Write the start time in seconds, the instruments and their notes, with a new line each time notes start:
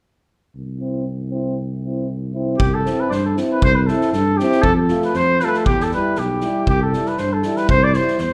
0.55 tuba C2
0.80 euphonium C4 E4
1.30 euphonium C4 E4
1.82 euphonium C4 E4
2.34 euphonium C4 E4
2.58 tuba C2, trumpet G4, kick
2.74 trumpet A4
2.85 euphonium C4 E4, snare
3.00 trumpet B4
3.10 tuba G2, trumpet C5 D5, snare
3.26 trumpet A4
3.36 euphonium C4 E4, snare
3.52 trumpet B4
3.62 tuba C2, trumpet C5, kick
3.75 trumpet B4
3.86 euphonium C4 E4, trumpet A4, snare
4.01 snare
4.12 tuba G2, trumpet A4, snare
4.37 euphonium C4, trumpet G4, snare
4.41 euphonium E4
4.52 snare
4.62 tuba F2, trumpet A4, kick
4.76 trumpet A4
4.88 euphonium A3 F4, snare
5.02 trumpet B4, snare
5.14 tuba F2, trumpet C5, snare
5.40 euphonium A3 F4, trumpet B4, snare
5.44 trumpet A4 B4
5.54 trumpet A4, snare
5.65 tuba E2, trumpet G4, kick
5.80 trumpet A4, snare
5.91 euphonium G3 E4, trumpet B4, snare
6.15 tuba B1, trumpet G4, snare
6.41 euphonium G3 E4, snare
6.67 tuba C2, trumpet G4, kick
6.82 trumpet A4
6.93 euphonium G3 E4, snare
7.06 trumpet B4, snare
7.18 tuba G2, trumpet C5, snare
7.33 trumpet A4
7.43 euphonium G3 E4, snare
7.57 trumpet B4, snare
7.69 tuba C2, trumpet C5, kick
7.84 trumpet D5
7.94 euphonium G3 E4, trumpet C5, snare
8.08 snare
8.18 tuba E2, trumpet C5, snare